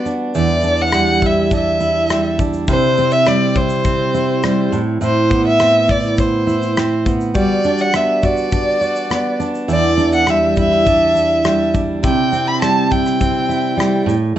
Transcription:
0.00 0.94 G3 medium
0.00 0.94 B3 soft
0.00 0.35 F#4 medium
0.06 0.63 D4 soft
0.06 shaker soft
0.35 2.69 E2 medium
0.35 1.22 E4 medium
0.35 0.83 D5 medium
0.35 shaker medium
0.63 1.50 D4 medium
0.63 shaker soft
0.81 1.28 F#5 medium
0.92 2.10 G3 soft
0.92 cross-stick medium
0.92 shaker medium
1.22 1.80 E4 soft
1.22 kick medium
1.22 shaker soft
1.26 1.53 E5 medium
1.51 2.38 D4 medium
1.51 2.37 E5 medium
1.51 kick medium
1.51 shaker medium
1.80 2.68 E4 soft
1.80 shaker soft
2.10 2.74 G3 soft
2.10 cross-stick medium
2.10 shaker medium
2.39 2.74 D4 soft
2.39 kick medium
2.39 shaker soft
2.53 shaker soft
2.68 4.72 C3 medium
2.68 3.55 E4 medium
2.68 3.14 C5 medium
2.68 kick medium
2.68 shaker medium
2.97 3.85 C4 medium
2.97 shaker soft
3.11 3.29 E5 medium
3.11 shaker medium
3.26 4.42 G3 soft
3.26 3.58 D5 medium
3.26 cross-stick medium
3.26 shaker medium
3.55 4.14 E4 medium
3.55 4.73 C5 medium
3.55 kick medium
3.55 shaker soft
3.69 shaker soft
3.84 5.30 C4 soft
3.84 kick medium
3.84 shaker medium
4.14 5.01 E4 medium
4.14 shaker soft
4.43 4.79 G3 soft
4.43 cross-stick medium
4.43 shaker medium
4.72 5.00 A2 medium
4.72 shaker soft
5.01 7.35 A2 medium
5.01 5.87 E4 medium
5.01 5.44 C5 medium
5.01 shaker medium
5.30 6.80 B3 soft
5.30 kick medium
5.30 shaker soft
5.47 5.92 E5 loud
5.59 6.76 C4 soft
5.59 cross-stick medium
5.59 shaker medium
5.88 6.46 E4 medium
5.88 6.21 D5 medium
5.88 kick medium
5.88 shaker soft
6.18 7.07 C5 medium
6.18 kick medium
6.18 shaker medium
6.47 7.34 E4 medium
6.47 shaker soft
6.62 shaker soft
6.77 7.42 C4 soft
6.77 cross-stick medium
6.77 shaker medium
7.06 7.64 B3 soft
7.06 kick medium
7.06 shaker soft
7.21 shaker soft
7.34 10.28 G3 medium
7.34 8.22 F#4 medium
7.34 7.82 D5 medium
7.34 kick medium
7.34 shaker medium
7.64 8.52 D4 medium
7.64 shaker soft
7.78 7.97 F#5 medium
7.78 shaker soft
7.93 9.10 B3 soft
7.93 8.26 E5 medium
7.93 cross-stick loud
7.93 shaker medium
8.23 8.80 F#4 medium
8.23 9.41 D5 medium
8.23 kick medium
8.23 shaker soft
8.37 shaker soft
8.52 9.39 D4 soft
8.52 kick medium
8.52 shaker medium
8.81 9.68 F#4 medium
8.81 shaker soft
8.96 shaker soft
9.10 10.27 B3 medium
9.10 cross-stick medium
9.10 shaker medium
9.40 9.97 D4 medium
9.40 shaker soft
9.55 shaker soft
9.68 12.03 E2 medium
9.68 10.57 E4 medium
9.68 10.12 D5 medium
9.68 shaker medium
9.97 10.85 D4 medium
9.97 shaker soft
10.12 10.32 F#5 medium
10.12 shaker soft
10.26 11.44 G3 soft
10.26 10.58 E5 medium
10.26 cross-stick loud
10.26 shaker medium
10.56 11.15 E4 medium
10.56 11.71 E5 medium
10.56 kick medium
10.56 shaker soft
10.72 cross-stick soft
10.86 11.73 D4 medium
10.86 kick medium
10.86 shaker medium
11.15 12.03 E4 medium
11.15 shaker soft
11.44 12.09 G3 medium
11.44 cross-stick medium
11.44 shaker medium
11.74 12.09 D4 medium
11.74 kick medium
11.74 shaker soft
12.03 14.06 C3 medium
12.03 12.91 E4 medium
12.03 12.49 G5 medium
12.03 kick loud
12.03 shaker medium
12.32 13.20 C4 medium
12.32 shaker soft
12.48 12.61 B5 medium
12.62 13.76 G3 soft
12.62 12.93 A5 medium
12.62 cross-stick loud
12.62 shaker medium
12.91 13.49 E4 medium
12.91 14.08 G5 medium
12.91 kick medium
12.91 shaker soft
13.06 cross-stick soft
13.06 shaker soft
13.21 14.14 C4 soft
13.21 kick medium
13.21 shaker medium
13.49 14.14 E4 medium
13.49 shaker soft
13.77 14.13 G3 medium
13.77 cross-stick medium
13.77 shaker medium
14.06 14.35 A2 medium
14.06 shaker soft

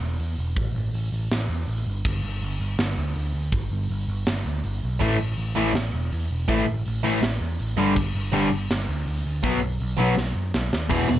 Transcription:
0.01 0.16 E1 medium
0.19 0.34 E2 medium
0.19 open hi-hat medium
0.38 0.53 E1 medium
0.56 0.71 A1 medium
0.56 kick loud
0.56 open hi-hat medium
0.75 0.90 A1 medium
0.94 1.08 A1 medium
0.94 open hi-hat medium
1.12 1.27 A1 medium
1.31 1.46 A1 medium
1.31 snare loud
1.31 open hi-hat medium
1.49 1.64 E2 medium
1.68 1.82 A1 medium
1.68 open hi-hat medium
1.87 2.01 G1 medium
2.05 2.20 G1 medium
2.05 kick loud
2.05 crash loud
2.23 2.38 G1 medium
2.42 2.56 G1 medium
2.42 open hi-hat medium
2.60 2.75 G1 medium
2.78 2.94 G1 medium
2.78 snare loud
2.78 open hi-hat medium
2.98 3.12 D2 medium
3.16 3.31 D2 medium
3.16 open hi-hat medium
3.34 3.49 D2 medium
3.52 3.67 G1 medium
3.52 kick loud
3.52 open hi-hat medium
3.71 3.86 G1 medium
3.89 4.05 G1 medium
3.89 open hi-hat medium
4.08 4.23 G1 medium
4.26 4.42 G1 medium
4.26 snare loud
4.26 open hi-hat medium
4.46 4.60 D2 medium
4.64 4.79 G1 medium
4.64 open hi-hat medium
4.84 4.98 B1 medium
5.01 5.16 A1 medium
5.01 5.16 A2 medium
5.01 5.16 E3 medium
5.01 5.16 A3 loud
5.01 kick loud
5.01 crash medium
5.20 5.34 A1 medium
5.38 5.52 A1 medium
5.38 open hi-hat medium
5.56 5.71 A1 medium
5.56 5.71 A2 medium
5.56 5.71 E3 medium
5.56 5.72 A3 medium
5.74 5.89 A1 medium
5.74 snare loud
5.74 open hi-hat medium
5.94 6.08 E1 medium
6.12 6.27 E2 medium
6.12 open hi-hat medium
6.31 6.45 E1 medium
6.49 6.63 A1 medium
6.49 6.63 A2 medium
6.49 6.64 E3 medium
6.49 6.64 A3 medium
6.49 kick loud
6.49 open hi-hat medium
6.67 6.82 A1 medium
6.86 7.01 A1 medium
6.86 open hi-hat medium
7.04 7.19 A1 medium
7.04 7.19 A2 medium
7.04 7.19 E3 medium
7.04 7.19 A3 medium
7.22 7.37 A1 medium
7.22 snare loud
7.22 open hi-hat medium
7.41 7.55 E2 medium
7.60 7.74 A1 medium
7.60 open hi-hat medium
7.78 7.92 G1 medium
7.78 7.93 G2 medium
7.78 7.93 D3 loud
7.78 7.93 G3 loud
7.96 8.11 G1 medium
7.96 kick loud
7.96 crash loud
8.15 8.29 G1 medium
8.33 8.48 G1 medium
8.33 8.48 G2 medium
8.33 8.48 D3 loud
8.33 8.48 G3 loud
8.33 open hi-hat medium
8.52 8.66 G1 medium
8.70 8.85 G1 medium
8.70 snare loud
8.70 open hi-hat medium
8.89 9.03 D2 medium
9.07 9.21 D2 medium
9.07 open hi-hat medium
9.26 9.40 D2 medium
9.44 9.58 B1 loud
9.44 9.58 B2 medium
9.44 9.59 F#3 medium
9.44 9.59 B3 loud
9.44 kick loud
9.44 open hi-hat medium
9.62 9.76 B1 medium
9.80 9.95 B1 medium
9.80 open hi-hat medium
9.98 10.13 B1 medium
9.98 10.13 B2 medium
9.98 10.14 F#3 medium
9.98 10.14 B3 loud
10.17 10.31 B1 medium
10.17 snare medium
10.36 10.50 F#2 medium
10.54 10.69 B1 medium
10.54 snare loud
10.73 10.87 D#2 medium
10.73 snare medium
10.89 11.02 E1 medium
10.89 11.07 E2 medium
10.89 11.07 B2 medium
10.89 11.08 E3 medium
10.89 kick loud
10.89 crash loud
11.08 11.19 E1 medium
11.08 11.19 E2 medium
11.08 11.19 B2 medium

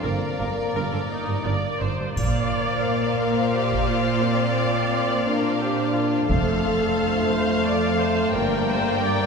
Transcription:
0.03 0.12 G1 soft
0.03 0.12 G2 soft
0.03 1.77 A#3 soft
0.03 0.21 A#4 soft
0.03 1.92 A#4 soft
0.03 1.92 D5 soft
0.39 0.47 G1 soft
0.39 0.47 G2 soft
0.39 0.47 A#4 soft
0.75 0.82 G1 soft
0.75 0.83 G2 soft
0.75 0.92 A#4 soft
0.93 1.00 G2 soft
0.93 1.00 A4 soft
0.93 1.00 A#4 soft
1.10 1.43 D#4 soft
1.28 1.35 G2 soft
1.45 1.53 G1 soft
1.45 1.53 G2 soft
1.45 1.81 D5 soft
1.81 1.88 G1 soft
1.81 1.89 G2 soft
1.81 2.16 C5 soft
1.99 2.06 G2 soft
2.16 2.82 A#1 soft
2.16 6.25 A#2 soft
2.16 4.19 A#3 medium
2.16 6.26 C5 soft
2.16 3.16 D5 soft
2.16 6.26 D5 soft
2.16 6.26 F5 soft
2.16 taiko soft
2.16 triangle soft
3.20 3.54 A#4 soft
3.54 3.88 G4 soft
3.72 taiko soft
3.89 4.23 F4 soft
4.22 5.24 C4 soft
4.22 5.27 D5 soft
5.25 6.29 D4 medium
5.25 5.61 A#4 soft
5.61 5.95 G4 soft
5.95 6.29 F4 soft
6.29 6.94 F1 soft
6.29 8.31 F2 soft
6.29 8.30 A3 medium
6.29 7.30 A4 soft
6.29 8.30 C5 soft
6.29 8.30 F5 soft
6.29 taiko soft
7.32 7.66 C5 soft
7.65 8.00 D5 soft
8.00 8.35 C5 soft
8.34 8.99 G1 soft
8.34 9.26 G2 soft
8.34 9.26 A#3 medium
8.34 8.69 A#4 soft
8.34 9.26 A#4 soft
8.34 9.26 D5 soft
8.34 9.26 G5 soft
8.68 9.03 C5 soft
9.03 9.26 D5 medium

